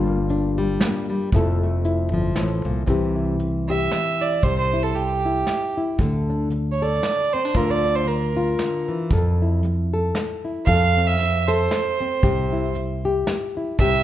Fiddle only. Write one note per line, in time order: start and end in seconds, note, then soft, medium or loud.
3.69 4.23 E5 medium
4.22 4.45 D5 medium
4.43 4.58 C5 medium
4.58 4.85 C5 medium
4.83 4.97 A4 medium
4.95 5.76 G4 medium
6.72 6.84 C#5 medium
6.83 7.34 D5 medium
7.33 7.58 C5 medium
7.56 7.71 A#4 medium
7.70 7.97 D5 medium
7.95 8.09 C5 medium
8.07 8.88 A#4 medium
10.65 11.08 F5 loud
11.07 11.49 E5 medium
11.48 12.75 C5 medium
13.79 14.03 E5 loud